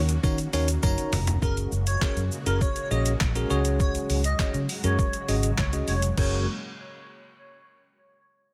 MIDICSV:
0, 0, Header, 1, 7, 480
1, 0, Start_track
1, 0, Key_signature, 6, "major"
1, 0, Tempo, 594059
1, 1151, Time_signature, 4, 2, 24, 8
1, 6900, End_track
2, 0, Start_track
2, 0, Title_t, "Digital synth lead"
2, 0, Program_c, 0, 84
2, 1151, Note_on_c, 0, 70, 93
2, 1254, Note_off_c, 0, 70, 0
2, 1510, Note_on_c, 0, 73, 71
2, 1614, Note_off_c, 0, 73, 0
2, 1631, Note_on_c, 0, 73, 91
2, 1735, Note_off_c, 0, 73, 0
2, 1990, Note_on_c, 0, 70, 81
2, 2094, Note_off_c, 0, 70, 0
2, 2111, Note_on_c, 0, 73, 87
2, 2318, Note_off_c, 0, 73, 0
2, 2351, Note_on_c, 0, 75, 81
2, 2455, Note_off_c, 0, 75, 0
2, 3071, Note_on_c, 0, 73, 106
2, 3174, Note_off_c, 0, 73, 0
2, 3432, Note_on_c, 0, 75, 90
2, 3535, Note_off_c, 0, 75, 0
2, 3551, Note_on_c, 0, 75, 79
2, 3655, Note_off_c, 0, 75, 0
2, 3911, Note_on_c, 0, 73, 85
2, 4249, Note_off_c, 0, 73, 0
2, 4512, Note_on_c, 0, 73, 87
2, 4615, Note_off_c, 0, 73, 0
2, 4751, Note_on_c, 0, 73, 88
2, 4854, Note_off_c, 0, 73, 0
2, 4992, Note_on_c, 0, 73, 85
2, 5214, Note_off_c, 0, 73, 0
2, 6900, End_track
3, 0, Start_track
3, 0, Title_t, "Tine electric piano"
3, 0, Program_c, 1, 4
3, 189, Note_on_c, 1, 61, 87
3, 190, Note_on_c, 1, 63, 86
3, 191, Note_on_c, 1, 66, 87
3, 192, Note_on_c, 1, 70, 81
3, 193, Note_on_c, 1, 73, 99
3, 302, Note_off_c, 1, 61, 0
3, 303, Note_off_c, 1, 63, 0
3, 303, Note_off_c, 1, 66, 0
3, 304, Note_off_c, 1, 70, 0
3, 304, Note_off_c, 1, 73, 0
3, 429, Note_on_c, 1, 61, 93
3, 431, Note_on_c, 1, 63, 83
3, 431, Note_on_c, 1, 66, 83
3, 432, Note_on_c, 1, 70, 83
3, 434, Note_on_c, 1, 73, 105
3, 542, Note_off_c, 1, 61, 0
3, 543, Note_off_c, 1, 63, 0
3, 543, Note_off_c, 1, 66, 0
3, 544, Note_off_c, 1, 70, 0
3, 545, Note_off_c, 1, 73, 0
3, 670, Note_on_c, 1, 61, 91
3, 670, Note_on_c, 1, 63, 82
3, 671, Note_on_c, 1, 66, 87
3, 671, Note_on_c, 1, 82, 81
3, 672, Note_on_c, 1, 70, 86
3, 674, Note_on_c, 1, 73, 98
3, 895, Note_off_c, 1, 61, 0
3, 896, Note_off_c, 1, 63, 0
3, 896, Note_off_c, 1, 66, 0
3, 897, Note_off_c, 1, 70, 0
3, 897, Note_off_c, 1, 73, 0
3, 1118, Note_off_c, 1, 82, 0
3, 1148, Note_on_c, 1, 61, 75
3, 1150, Note_on_c, 1, 66, 67
3, 1151, Note_on_c, 1, 68, 73
3, 1153, Note_on_c, 1, 70, 81
3, 1375, Note_off_c, 1, 61, 0
3, 1375, Note_off_c, 1, 66, 0
3, 1376, Note_off_c, 1, 68, 0
3, 1377, Note_off_c, 1, 70, 0
3, 1629, Note_on_c, 1, 61, 73
3, 1630, Note_on_c, 1, 66, 68
3, 1631, Note_on_c, 1, 68, 68
3, 1632, Note_on_c, 1, 70, 80
3, 1799, Note_off_c, 1, 61, 0
3, 1799, Note_off_c, 1, 66, 0
3, 1800, Note_off_c, 1, 68, 0
3, 1800, Note_off_c, 1, 70, 0
3, 1990, Note_on_c, 1, 61, 71
3, 1991, Note_on_c, 1, 66, 67
3, 1992, Note_on_c, 1, 68, 65
3, 1994, Note_on_c, 1, 70, 79
3, 2159, Note_off_c, 1, 61, 0
3, 2160, Note_off_c, 1, 66, 0
3, 2160, Note_off_c, 1, 68, 0
3, 2161, Note_off_c, 1, 70, 0
3, 2350, Note_on_c, 1, 61, 76
3, 2351, Note_on_c, 1, 66, 71
3, 2353, Note_on_c, 1, 68, 70
3, 2354, Note_on_c, 1, 73, 83
3, 2519, Note_off_c, 1, 61, 0
3, 2520, Note_off_c, 1, 66, 0
3, 2520, Note_off_c, 1, 68, 0
3, 2521, Note_off_c, 1, 73, 0
3, 2709, Note_on_c, 1, 61, 85
3, 2711, Note_on_c, 1, 66, 79
3, 2712, Note_on_c, 1, 68, 77
3, 2714, Note_on_c, 1, 70, 100
3, 2819, Note_off_c, 1, 61, 0
3, 2820, Note_off_c, 1, 66, 0
3, 2821, Note_off_c, 1, 68, 0
3, 2829, Note_on_c, 1, 61, 92
3, 2830, Note_on_c, 1, 66, 86
3, 2831, Note_on_c, 1, 68, 87
3, 2832, Note_off_c, 1, 70, 0
3, 2832, Note_on_c, 1, 73, 105
3, 3405, Note_off_c, 1, 61, 0
3, 3406, Note_off_c, 1, 66, 0
3, 3407, Note_off_c, 1, 68, 0
3, 3407, Note_off_c, 1, 73, 0
3, 3548, Note_on_c, 1, 61, 76
3, 3550, Note_on_c, 1, 66, 71
3, 3551, Note_on_c, 1, 68, 69
3, 3553, Note_on_c, 1, 73, 82
3, 3718, Note_off_c, 1, 61, 0
3, 3719, Note_off_c, 1, 66, 0
3, 3720, Note_off_c, 1, 68, 0
3, 3721, Note_off_c, 1, 73, 0
3, 3908, Note_on_c, 1, 61, 77
3, 3910, Note_on_c, 1, 66, 71
3, 3911, Note_on_c, 1, 68, 67
3, 3913, Note_on_c, 1, 70, 83
3, 4078, Note_off_c, 1, 61, 0
3, 4079, Note_off_c, 1, 66, 0
3, 4080, Note_off_c, 1, 68, 0
3, 4081, Note_off_c, 1, 70, 0
3, 4269, Note_on_c, 1, 61, 79
3, 4270, Note_on_c, 1, 66, 71
3, 4271, Note_on_c, 1, 68, 74
3, 4272, Note_on_c, 1, 75, 84
3, 4438, Note_off_c, 1, 61, 0
3, 4439, Note_off_c, 1, 66, 0
3, 4440, Note_off_c, 1, 68, 0
3, 4440, Note_off_c, 1, 75, 0
3, 4628, Note_on_c, 1, 61, 72
3, 4630, Note_on_c, 1, 66, 69
3, 4632, Note_on_c, 1, 68, 69
3, 4633, Note_on_c, 1, 75, 78
3, 4798, Note_off_c, 1, 61, 0
3, 4799, Note_off_c, 1, 66, 0
3, 4800, Note_off_c, 1, 68, 0
3, 4801, Note_off_c, 1, 75, 0
3, 4989, Note_on_c, 1, 61, 86
3, 4989, Note_on_c, 1, 66, 76
3, 4990, Note_on_c, 1, 68, 77
3, 4990, Note_on_c, 1, 70, 94
3, 5213, Note_off_c, 1, 61, 0
3, 5213, Note_off_c, 1, 66, 0
3, 5213, Note_off_c, 1, 68, 0
3, 5213, Note_off_c, 1, 70, 0
3, 6900, End_track
4, 0, Start_track
4, 0, Title_t, "String machine"
4, 0, Program_c, 2, 50
4, 0, Note_on_c, 2, 51, 82
4, 0, Note_on_c, 2, 58, 70
4, 0, Note_on_c, 2, 61, 72
4, 0, Note_on_c, 2, 66, 87
4, 1118, Note_off_c, 2, 58, 0
4, 1132, Note_off_c, 2, 51, 0
4, 1132, Note_off_c, 2, 61, 0
4, 1132, Note_off_c, 2, 66, 0
4, 1149, Note_on_c, 2, 49, 78
4, 1149, Note_on_c, 2, 56, 69
4, 1149, Note_on_c, 2, 66, 79
4, 1150, Note_on_c, 2, 58, 67
4, 2813, Note_off_c, 2, 49, 0
4, 2813, Note_off_c, 2, 58, 0
4, 2813, Note_off_c, 2, 66, 0
4, 2829, Note_on_c, 2, 54, 76
4, 2830, Note_on_c, 2, 49, 82
4, 2830, Note_on_c, 2, 66, 88
4, 4957, Note_off_c, 2, 56, 0
4, 4968, Note_off_c, 2, 54, 0
4, 4969, Note_off_c, 2, 49, 0
4, 4969, Note_off_c, 2, 66, 0
4, 4989, Note_on_c, 2, 49, 68
4, 4989, Note_on_c, 2, 56, 65
4, 4989, Note_on_c, 2, 58, 61
4, 4990, Note_on_c, 2, 66, 78
4, 5213, Note_off_c, 2, 49, 0
4, 5213, Note_off_c, 2, 56, 0
4, 5213, Note_off_c, 2, 58, 0
4, 5213, Note_off_c, 2, 66, 0
4, 6900, End_track
5, 0, Start_track
5, 0, Title_t, "Fingered electric bass"
5, 0, Program_c, 3, 33
5, 0, Note_on_c, 3, 39, 94
5, 134, Note_off_c, 3, 39, 0
5, 191, Note_on_c, 3, 51, 108
5, 374, Note_off_c, 3, 51, 0
5, 431, Note_on_c, 3, 39, 96
5, 614, Note_off_c, 3, 39, 0
5, 673, Note_on_c, 3, 42, 94
5, 763, Note_off_c, 3, 42, 0
5, 910, Note_on_c, 3, 29, 93
5, 1093, Note_off_c, 3, 29, 0
5, 1149, Note_on_c, 3, 30, 96
5, 1333, Note_off_c, 3, 30, 0
5, 1390, Note_on_c, 3, 30, 99
5, 1574, Note_off_c, 3, 30, 0
5, 1751, Note_on_c, 3, 42, 90
5, 1842, Note_off_c, 3, 42, 0
5, 1990, Note_on_c, 3, 30, 91
5, 2081, Note_off_c, 3, 30, 0
5, 2351, Note_on_c, 3, 34, 98
5, 2534, Note_off_c, 3, 34, 0
5, 2593, Note_on_c, 3, 34, 95
5, 2775, Note_off_c, 3, 34, 0
5, 2832, Note_on_c, 3, 37, 97
5, 3198, Note_off_c, 3, 37, 0
5, 3312, Note_on_c, 3, 37, 99
5, 3494, Note_off_c, 3, 37, 0
5, 3671, Note_on_c, 3, 49, 112
5, 3762, Note_off_c, 3, 49, 0
5, 3910, Note_on_c, 3, 42, 96
5, 4002, Note_off_c, 3, 42, 0
5, 4271, Note_on_c, 3, 32, 100
5, 4454, Note_off_c, 3, 32, 0
5, 4512, Note_on_c, 3, 37, 98
5, 4695, Note_off_c, 3, 37, 0
5, 4750, Note_on_c, 3, 29, 90
5, 4933, Note_off_c, 3, 29, 0
5, 4990, Note_on_c, 3, 30, 98
5, 5213, Note_off_c, 3, 30, 0
5, 6900, End_track
6, 0, Start_track
6, 0, Title_t, "Muted fingered electric bass strokes"
6, 1628, Note_on_c, 9, 29, 51
6, 1709, Note_off_c, 9, 29, 0
6, 6900, End_track
7, 0, Start_track
7, 0, Title_t, "Drums"
7, 70, Note_on_c, 9, 42, 69
7, 70, Note_on_c, 9, 82, 70
7, 151, Note_off_c, 9, 42, 0
7, 151, Note_off_c, 9, 82, 0
7, 191, Note_on_c, 9, 36, 121
7, 191, Note_on_c, 9, 54, 51
7, 192, Note_on_c, 9, 82, 69
7, 271, Note_off_c, 9, 54, 0
7, 272, Note_off_c, 9, 36, 0
7, 273, Note_off_c, 9, 82, 0
7, 309, Note_on_c, 9, 42, 52
7, 309, Note_on_c, 9, 82, 52
7, 390, Note_off_c, 9, 42, 0
7, 390, Note_off_c, 9, 82, 0
7, 429, Note_on_c, 9, 54, 53
7, 431, Note_on_c, 9, 46, 83
7, 431, Note_on_c, 9, 82, 59
7, 510, Note_off_c, 9, 54, 0
7, 512, Note_off_c, 9, 46, 0
7, 512, Note_off_c, 9, 82, 0
7, 550, Note_on_c, 9, 42, 89
7, 550, Note_on_c, 9, 82, 91
7, 631, Note_off_c, 9, 42, 0
7, 631, Note_off_c, 9, 82, 0
7, 669, Note_on_c, 9, 54, 92
7, 670, Note_on_c, 9, 82, 78
7, 671, Note_on_c, 9, 48, 67
7, 673, Note_on_c, 9, 36, 126
7, 750, Note_off_c, 9, 54, 0
7, 751, Note_off_c, 9, 82, 0
7, 752, Note_off_c, 9, 48, 0
7, 754, Note_off_c, 9, 36, 0
7, 791, Note_on_c, 9, 42, 61
7, 791, Note_on_c, 9, 82, 56
7, 872, Note_off_c, 9, 42, 0
7, 872, Note_off_c, 9, 82, 0
7, 909, Note_on_c, 9, 54, 46
7, 910, Note_on_c, 9, 46, 83
7, 910, Note_on_c, 9, 82, 58
7, 911, Note_on_c, 9, 45, 107
7, 990, Note_off_c, 9, 54, 0
7, 991, Note_off_c, 9, 46, 0
7, 991, Note_off_c, 9, 82, 0
7, 992, Note_off_c, 9, 45, 0
7, 1029, Note_on_c, 9, 42, 76
7, 1029, Note_on_c, 9, 82, 74
7, 1031, Note_on_c, 9, 43, 102
7, 1109, Note_off_c, 9, 42, 0
7, 1109, Note_off_c, 9, 82, 0
7, 1112, Note_off_c, 9, 43, 0
7, 1150, Note_on_c, 9, 36, 112
7, 1150, Note_on_c, 9, 82, 75
7, 1231, Note_off_c, 9, 36, 0
7, 1231, Note_off_c, 9, 82, 0
7, 1270, Note_on_c, 9, 42, 50
7, 1270, Note_on_c, 9, 82, 50
7, 1351, Note_off_c, 9, 42, 0
7, 1351, Note_off_c, 9, 82, 0
7, 1391, Note_on_c, 9, 82, 57
7, 1471, Note_off_c, 9, 82, 0
7, 1509, Note_on_c, 9, 42, 67
7, 1509, Note_on_c, 9, 82, 65
7, 1590, Note_off_c, 9, 42, 0
7, 1590, Note_off_c, 9, 82, 0
7, 1629, Note_on_c, 9, 36, 116
7, 1632, Note_on_c, 9, 39, 98
7, 1632, Note_on_c, 9, 82, 73
7, 1635, Note_on_c, 9, 38, 77
7, 1709, Note_off_c, 9, 36, 0
7, 1712, Note_off_c, 9, 39, 0
7, 1712, Note_off_c, 9, 82, 0
7, 1716, Note_off_c, 9, 38, 0
7, 1752, Note_on_c, 9, 42, 45
7, 1752, Note_on_c, 9, 82, 48
7, 1833, Note_off_c, 9, 42, 0
7, 1833, Note_off_c, 9, 82, 0
7, 1872, Note_on_c, 9, 82, 60
7, 1953, Note_off_c, 9, 82, 0
7, 1991, Note_on_c, 9, 42, 66
7, 1991, Note_on_c, 9, 82, 64
7, 2071, Note_off_c, 9, 42, 0
7, 2071, Note_off_c, 9, 82, 0
7, 2111, Note_on_c, 9, 36, 112
7, 2112, Note_on_c, 9, 82, 64
7, 2191, Note_off_c, 9, 36, 0
7, 2193, Note_off_c, 9, 82, 0
7, 2229, Note_on_c, 9, 42, 51
7, 2229, Note_on_c, 9, 82, 51
7, 2310, Note_off_c, 9, 42, 0
7, 2310, Note_off_c, 9, 82, 0
7, 2352, Note_on_c, 9, 82, 56
7, 2433, Note_off_c, 9, 82, 0
7, 2470, Note_on_c, 9, 42, 84
7, 2470, Note_on_c, 9, 82, 87
7, 2551, Note_off_c, 9, 42, 0
7, 2551, Note_off_c, 9, 82, 0
7, 2590, Note_on_c, 9, 39, 118
7, 2590, Note_on_c, 9, 82, 72
7, 2593, Note_on_c, 9, 36, 113
7, 2593, Note_on_c, 9, 38, 95
7, 2670, Note_off_c, 9, 82, 0
7, 2671, Note_off_c, 9, 39, 0
7, 2673, Note_off_c, 9, 36, 0
7, 2674, Note_off_c, 9, 38, 0
7, 2711, Note_on_c, 9, 42, 56
7, 2711, Note_on_c, 9, 82, 56
7, 2792, Note_off_c, 9, 42, 0
7, 2792, Note_off_c, 9, 82, 0
7, 2830, Note_on_c, 9, 82, 54
7, 2910, Note_off_c, 9, 82, 0
7, 2948, Note_on_c, 9, 42, 71
7, 2948, Note_on_c, 9, 82, 71
7, 3029, Note_off_c, 9, 42, 0
7, 3029, Note_off_c, 9, 82, 0
7, 3069, Note_on_c, 9, 82, 76
7, 3070, Note_on_c, 9, 36, 118
7, 3150, Note_off_c, 9, 82, 0
7, 3151, Note_off_c, 9, 36, 0
7, 3190, Note_on_c, 9, 42, 53
7, 3190, Note_on_c, 9, 82, 53
7, 3271, Note_off_c, 9, 42, 0
7, 3271, Note_off_c, 9, 82, 0
7, 3310, Note_on_c, 9, 46, 78
7, 3310, Note_on_c, 9, 82, 57
7, 3391, Note_off_c, 9, 46, 0
7, 3391, Note_off_c, 9, 82, 0
7, 3428, Note_on_c, 9, 42, 68
7, 3428, Note_on_c, 9, 82, 66
7, 3509, Note_off_c, 9, 42, 0
7, 3509, Note_off_c, 9, 82, 0
7, 3548, Note_on_c, 9, 36, 114
7, 3551, Note_on_c, 9, 39, 100
7, 3551, Note_on_c, 9, 82, 71
7, 3554, Note_on_c, 9, 38, 83
7, 3629, Note_off_c, 9, 36, 0
7, 3631, Note_off_c, 9, 39, 0
7, 3631, Note_off_c, 9, 82, 0
7, 3635, Note_off_c, 9, 38, 0
7, 3671, Note_on_c, 9, 42, 47
7, 3671, Note_on_c, 9, 82, 48
7, 3751, Note_off_c, 9, 42, 0
7, 3751, Note_off_c, 9, 82, 0
7, 3791, Note_on_c, 9, 46, 87
7, 3791, Note_on_c, 9, 82, 61
7, 3872, Note_off_c, 9, 46, 0
7, 3872, Note_off_c, 9, 82, 0
7, 3910, Note_on_c, 9, 42, 70
7, 3910, Note_on_c, 9, 82, 69
7, 3990, Note_off_c, 9, 42, 0
7, 3990, Note_off_c, 9, 82, 0
7, 4030, Note_on_c, 9, 36, 116
7, 4031, Note_on_c, 9, 82, 66
7, 4111, Note_off_c, 9, 36, 0
7, 4112, Note_off_c, 9, 82, 0
7, 4148, Note_on_c, 9, 42, 52
7, 4148, Note_on_c, 9, 82, 51
7, 4229, Note_off_c, 9, 42, 0
7, 4229, Note_off_c, 9, 82, 0
7, 4271, Note_on_c, 9, 46, 80
7, 4271, Note_on_c, 9, 82, 57
7, 4352, Note_off_c, 9, 46, 0
7, 4352, Note_off_c, 9, 82, 0
7, 4389, Note_on_c, 9, 42, 82
7, 4389, Note_on_c, 9, 82, 86
7, 4470, Note_off_c, 9, 42, 0
7, 4470, Note_off_c, 9, 82, 0
7, 4508, Note_on_c, 9, 82, 72
7, 4509, Note_on_c, 9, 39, 124
7, 4512, Note_on_c, 9, 36, 119
7, 4512, Note_on_c, 9, 38, 95
7, 4589, Note_off_c, 9, 82, 0
7, 4590, Note_off_c, 9, 39, 0
7, 4593, Note_off_c, 9, 36, 0
7, 4593, Note_off_c, 9, 38, 0
7, 4629, Note_on_c, 9, 42, 56
7, 4629, Note_on_c, 9, 82, 56
7, 4710, Note_off_c, 9, 42, 0
7, 4710, Note_off_c, 9, 82, 0
7, 4748, Note_on_c, 9, 46, 75
7, 4748, Note_on_c, 9, 82, 52
7, 4829, Note_off_c, 9, 46, 0
7, 4829, Note_off_c, 9, 82, 0
7, 4867, Note_on_c, 9, 42, 72
7, 4867, Note_on_c, 9, 82, 69
7, 4948, Note_off_c, 9, 42, 0
7, 4948, Note_off_c, 9, 82, 0
7, 4989, Note_on_c, 9, 49, 85
7, 4990, Note_on_c, 9, 36, 101
7, 5070, Note_off_c, 9, 49, 0
7, 5071, Note_off_c, 9, 36, 0
7, 6900, End_track
0, 0, End_of_file